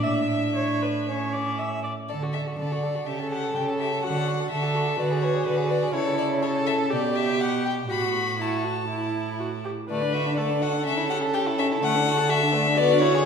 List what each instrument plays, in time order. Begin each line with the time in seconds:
0.02 cello A2, violin D4 E5, viola E5
0.56 viola C#5
0.82 viola B4
1.08 violin C#4, viola C#5
1.33 viola D5
1.59 viola E5
1.84 viola D5
2.09 cello D3, violin A4 D5
2.23 violin F#4
2.33 violin A4 E5
2.47 violin F#4
2.57 cello D3, violin A4 D5
2.72 violin F#4
2.83 violin A4
2.95 violin F#4
3.06 cello C#3, violin G4 E5, viola A4
3.19 violin A4
3.31 violin G4 F#5
3.44 violin A4
3.55 cello C#3, violin G4 G5
3.69 violin A4
3.79 violin G4 E5
3.92 violin A4
4.03 cello D3, violin F#4 F#5, viola F#4
4.16 violin A4
4.28 violin F#4
4.40 violin A4
4.50 cello D3, violin F#4 E5, viola A4
4.63 violin A4
4.75 violin F#4
4.87 violin A4
4.98 cello D3, viola F#4, violin B4 D5
5.11 violin G#4
5.22 violin B4 C#5
5.33 violin G#4
5.46 cello D3, violin B4
5.57 violin G#4
5.69 violin B4 D5
5.83 violin G#4
5.94 cello C#3, viola E4, violin A4 C#5
6.18 violin D5
6.42 viola A4, violin A4 C#5
6.66 violin E5
6.91 cello B2, viola G4, violin G4 D5
7.15 violin E5
7.41 violin F#5
7.65 violin G5
7.90 cello A2, violin F#4 B5, viola F#4
8.39 viola E4, violin F#4 A5
8.64 viola F#4
8.90 violin E4, viola E4
9.40 viola F#4
9.65 viola G4
9.90 cello D3, violin A3 D5, viola B4
10.02 violin D4
10.13 violin F#4 E5
10.26 violin D4
10.37 violin A3 D5, viola A4
10.50 violin D4
10.62 violin F#4 F#5
10.73 violin D4
10.85 cello C#3, violin C#4 E5
10.97 violin E4
11.10 violin G4 F#5
11.23 violin A4
11.34 violin G4 G5
11.47 violin E4
11.59 violin C#4 E5
11.71 violin E4
11.82 cello D3, violin A3 F#5
11.95 violin D4
12.07 violin F#4
12.19 violin A4
12.30 violin F#4 E5
12.43 violin D4
12.54 violin A3
12.67 violin D4
12.77 violin B3 D5, viola F#4
12.90 violin D4
13.00 violin E4 C#5
13.15 violin G#4